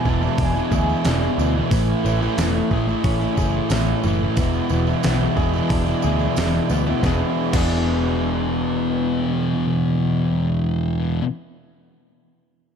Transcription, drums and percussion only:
0.05 kick, tambourine
0.23 tambourine
0.38 kick, open hi-hat, tambourine
0.56 tambourine
0.72 kick, tambourine
0.89 tambourine
1.05 snare, open hi-hat, tambourine
1.23 tambourine
1.39 tambourine
1.71 kick, open hi-hat, tambourine
2.06 tambourine
2.22 tambourine
2.38 snare, open hi-hat, tambourine
2.55 tambourine
2.71 kick, tambourine
2.89 tambourine
3.04 kick, open hi-hat, tambourine
3.21 tambourine
3.37 kick, tambourine
3.70 snare, open hi-hat, tambourine
3.87 tambourine
4.04 tambourine
4.37 kick, open hi-hat, tambourine
4.53 tambourine
4.70 tambourine
4.87 tambourine
5.03 snare, open hi-hat, tambourine
5.20 tambourine
5.37 kick, tambourine
5.53 tambourine
5.69 kick, open hi-hat, tambourine
5.86 tambourine
6.02 tambourine
6.19 tambourine
6.37 snare, open hi-hat, tambourine
6.53 tambourine
6.70 tambourine
6.87 tambourine
7.03 kick, snare, tambourine
7.53 kick, crash, tambourine

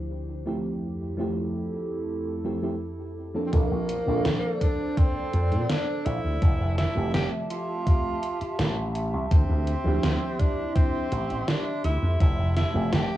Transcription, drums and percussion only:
3.53 kick, closed hi-hat
3.89 closed hi-hat
4.25 snare, closed hi-hat
4.61 kick, closed hi-hat
4.97 kick, closed hi-hat
5.34 closed hi-hat
5.52 closed hi-hat
5.70 snare, closed hi-hat
6.06 closed hi-hat
6.42 kick, closed hi-hat
6.78 snare, closed hi-hat
7.14 snare, closed hi-hat
7.50 closed hi-hat
7.87 kick, closed hi-hat
8.23 closed hi-hat
8.41 closed hi-hat
8.59 snare, closed hi-hat
8.95 closed hi-hat
9.31 kick, closed hi-hat
9.67 closed hi-hat
10.03 snare, closed hi-hat
10.40 kick, closed hi-hat
10.76 kick, closed hi-hat
11.12 closed hi-hat
11.30 closed hi-hat
11.48 snare, closed hi-hat
11.84 closed hi-hat
12.20 kick, closed hi-hat
12.57 snare, closed hi-hat
12.93 snare, closed hi-hat

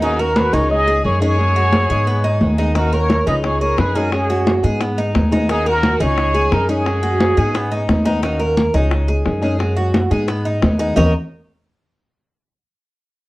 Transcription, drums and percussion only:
0.02 high conga
0.20 high conga
0.36 high conga
0.70 high conga
0.87 high conga
1.05 high conga
1.22 high conga
1.39 high conga
1.56 high conga
1.73 high conga
1.90 high conga
2.07 high conga
2.24 high conga
2.41 high conga
2.76 high bongo, high conga
2.93 high conga
3.10 high bongo, high conga
3.44 high bongo, high conga
3.62 high conga
3.78 high bongo, low bongo, high conga
3.96 high conga
4.12 high bongo, high conga
4.30 high bongo, high conga
4.47 high bongo, high conga
4.64 high bongo, high conga
4.81 high bongo, high conga
4.98 high conga
5.15 high bongo, low bongo, high conga
5.32 high bongo, high conga
5.49 high bongo
5.66 high conga
5.83 high bongo, high conga
6.18 high bongo, high conga
6.35 high conga
6.52 high bongo, low bongo, high conga
6.69 high conga
6.86 high bongo, high conga
7.03 high bongo, high conga
7.20 high bongo, high conga
7.38 high bongo, high conga
7.55 high bongo, high conga
7.72 high conga
7.89 high bongo, low bongo, high conga
8.06 high bongo, high conga
8.23 high bongo, high conga
8.40 high conga
8.57 high bongo, high conga
8.91 high bongo, high conga
9.09 high conga
9.26 high bongo, low bongo, high conga
9.43 high conga
9.60 high bongo, high conga
9.77 high bongo, high conga
9.94 high bongo, high conga
10.11 high bongo, high conga
10.28 high bongo, high conga
10.46 high conga
10.62 high bongo, low bongo, high conga
10.80 high bongo
10.97 low bongo, low conga

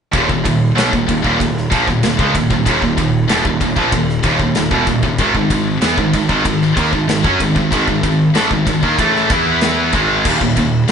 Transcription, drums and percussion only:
0.13 kick, ride
0.29 kick
0.45 kick, ride
0.78 snare, ride
0.93 kick
1.09 kick, ride
1.24 kick
1.40 kick, ride
1.57 snare
1.72 kick, ride
1.88 kick
2.03 snare, ride
2.19 kick
2.35 kick, ride
2.51 kick
2.66 kick, ride
2.82 kick
2.98 kick, ride
3.29 snare, ride
3.45 kick
3.61 kick, ride
3.77 kick
3.92 kick, ride
4.09 snare
4.23 kick, ride
4.40 kick
4.55 snare, ride
4.71 kick
4.87 kick, ride
5.03 kick
5.18 kick, ride
5.35 kick
5.50 kick, ride
5.82 snare, ride
5.98 kick
6.13 kick, ride
6.29 kick
6.45 kick, ride
6.62 snare
6.77 kick, ride
6.93 kick
7.09 snare, ride
7.24 kick
7.40 kick, ride
7.56 kick
7.72 kick, ride
7.88 kick
8.03 kick, ride
8.35 snare, ride
8.51 kick
8.67 kick, ride
8.83 kick
8.99 kick, ride
9.16 snare
9.30 kick, ride
9.61 snare, ride
9.93 kick, ride
10.25 kick, crash
10.41 kick
10.57 kick, ride
10.88 ride

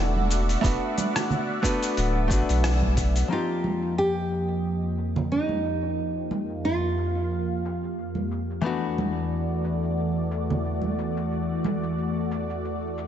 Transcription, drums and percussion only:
0.16 high conga
0.31 open hi-hat, shaker
0.49 open hi-hat, shaker
0.64 kick, open hi-hat, shaker
0.98 open hi-hat, high conga, shaker
1.16 cross-stick, open hi-hat, shaker
1.30 low conga, shaker
1.64 kick, open hi-hat, shaker
1.83 open hi-hat, shaker
1.97 open hi-hat, shaker
2.30 kick, open hi-hat, shaker
2.49 open hi-hat, shaker
2.64 cross-stick, open hi-hat, shaker
2.82 kick, high conga
2.97 kick, open hi-hat, shaker
3.16 open hi-hat, shaker
3.31 shaker
3.64 high conga, shaker
3.83 shaker
4.31 shaker
4.49 shaker
4.65 shaker
4.97 shaker
5.16 low conga, shaker
5.31 shaker
5.49 high conga
5.64 shaker
5.83 shaker
5.98 shaker
6.31 high conga, shaker
6.49 shaker
6.64 shaker
6.98 shaker
7.16 shaker
7.31 shaker
7.65 shaker
7.83 shaker
7.99 shaker
8.15 high conga
8.31 shaker
8.50 shaker
8.98 high conga, shaker
9.16 shaker
9.32 shaker
9.64 shaker
9.83 shaker
9.98 shaker
10.31 shaker
10.50 low conga, shaker
10.65 shaker
10.82 high conga
10.98 shaker
11.17 shaker
11.32 shaker
11.64 high conga, shaker
11.83 shaker
11.98 shaker
12.31 shaker
12.50 shaker
12.65 shaker
12.98 shaker

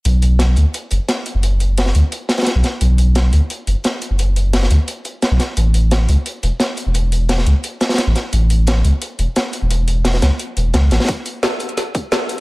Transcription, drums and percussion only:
0.05 closed hi-hat
0.22 closed hi-hat
0.39 snare, closed hi-hat
0.56 closed hi-hat
0.74 closed hi-hat
0.91 closed hi-hat
1.08 snare, closed hi-hat
1.26 closed hi-hat
1.43 closed hi-hat
1.60 closed hi-hat
1.78 snare, closed hi-hat, open hi-hat
1.86 snare
1.95 closed hi-hat
2.12 closed hi-hat
2.29 snare, closed hi-hat
2.38 snare, closed hi-hat
2.41 snare, closed hi-hat
2.46 snare, closed hi-hat
2.64 snare, closed hi-hat
2.81 closed hi-hat
2.98 closed hi-hat
3.15 snare, closed hi-hat
3.33 closed hi-hat
3.50 closed hi-hat
3.67 closed hi-hat
3.84 snare, closed hi-hat
4.02 closed hi-hat
4.19 closed hi-hat
4.36 closed hi-hat
4.53 snare, closed hi-hat, open hi-hat
4.63 snare
4.70 closed hi-hat
4.88 closed hi-hat
5.05 closed hi-hat
5.22 snare, closed hi-hat
5.39 snare, closed hi-hat
5.57 closed hi-hat
5.74 closed hi-hat
5.91 snare, closed hi-hat
6.09 closed hi-hat
6.26 closed hi-hat
6.43 closed hi-hat
6.60 snare, closed hi-hat
6.77 closed hi-hat
6.94 closed hi-hat
7.12 closed hi-hat
7.29 snare, closed hi-hat, open hi-hat
7.38 snare
7.46 closed hi-hat
7.64 closed hi-hat
7.81 snare, closed hi-hat
7.89 snare, closed hi-hat
7.94 snare, closed hi-hat
7.98 snare, closed hi-hat
8.15 snare, closed hi-hat
8.33 closed hi-hat
8.50 closed hi-hat
8.67 snare, closed hi-hat
8.85 closed hi-hat
9.02 closed hi-hat
9.19 closed hi-hat
9.36 snare, closed hi-hat
9.53 closed hi-hat
9.71 closed hi-hat
9.88 closed hi-hat
10.05 snare, closed hi-hat, open hi-hat
10.14 snare
10.22 snare, closed hi-hat
10.39 closed hi-hat
10.57 closed hi-hat
10.74 snare, closed hi-hat
10.91 snare, closed hi-hat
11.00 snare, closed hi-hat
11.04 snare, closed hi-hat
11.09 kick, closed hi-hat
11.26 closed hi-hat
11.43 snare, closed hi-hat
11.60 closed hi-hat
11.69 closed hi-hat
11.77 snare, closed hi-hat
11.95 kick, closed hi-hat
12.12 snare, closed hi-hat
12.29 closed hi-hat

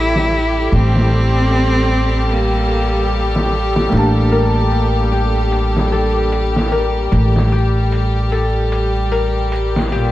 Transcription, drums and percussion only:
0.16 snare
0.31 closed hi-hat
0.72 closed hi-hat
0.96 snare
1.12 closed hi-hat
1.51 closed hi-hat
1.92 closed hi-hat
2.31 closed hi-hat
2.71 closed hi-hat
3.11 closed hi-hat
3.36 snare
3.52 closed hi-hat
3.76 snare
3.92 closed hi-hat
4.32 closed hi-hat
4.55 closed hi-hat
4.72 closed hi-hat
5.12 closed hi-hat
5.52 closed hi-hat
5.77 snare
5.92 closed hi-hat
6.32 closed hi-hat
6.56 snare
6.72 closed hi-hat
7.12 closed hi-hat
7.36 snare
7.52 closed hi-hat
7.92 closed hi-hat
8.32 closed hi-hat
8.72 closed hi-hat
9.12 closed hi-hat
9.52 closed hi-hat
9.76 snare
9.92 closed hi-hat

